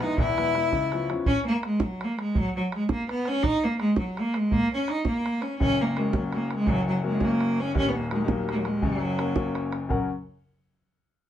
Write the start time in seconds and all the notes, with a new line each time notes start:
Already playing: E1
0.01 E3 G#3 B3 D#4, bodhran
0.17 E1 E2 E4, bodhran
0.38 E3 G#3 B3, bodhran
0.55 E3 G#3 B3, bodhran
0.72 C#2, bodhran
0.92 F3 B3 C#4, bodhran
1.10 F3 B3 C#4, bodhran
1.26 C#4, bodhran
1.46 A#3
1.63 G#3, bodhran
1.80 F#3, bodhran
2.01 A#3, bodhran
2.19 G#3, bodhran
2.35 F#3, bodhran
2.56 F#3
2.72 G#3, bodhran
2.89 A#3, bodhran
3.09 B3, bodhran
3.25 C#4, bodhran
3.43 D#4, bodhran
3.64 A#3
3.80 G#3, bodhran
3.96 F#3, bodhran
4.17 A#3, bodhran
4.34 G#3, bodhran
4.51 A#3, bodhran
4.74 C#4
4.88 D#4, bodhran
5.05 A#3, bodhran
5.26 bodhran
5.41 C#4, bodhran
5.59 F#1 F#2 C#4, bodhran
5.81 A#3
5.97 F#3 G#3 A#3 C#4, bodhran
6.13 F#3 A#3 C#4, bodhran
6.32 A#3, bodhran
6.50 bodhran
6.55 G#3
6.67 F#1 F#2 F#3, bodhran
6.88 F#3
7.03 F#3 G#3 A#3 C#4
7.20 F#3 A#3 C#4, bodhran
7.24 A#3
7.41 bodhran
7.60 C#4
7.75 D#1 D#2 C#4, bodhran
7.88 B3
7.95 A#3
8.11 F#3 G#3 A#3 D#4, bodhran
8.22 G#3
8.28 F#3 A#3 D#4, bodhran
8.49 A#3, bodhran
8.57 F#3
8.65 G#3, bodhran
8.82 F#1 F#2 F#3, bodhran
9.18 F#3 A#3 C#4, bodhran
9.35 F#3 A#3 C#4, bodhran
9.55 bodhran
9.72 bodhran
9.89 F#2 C#3 F#3 C#4 A#4 F#5, bodhran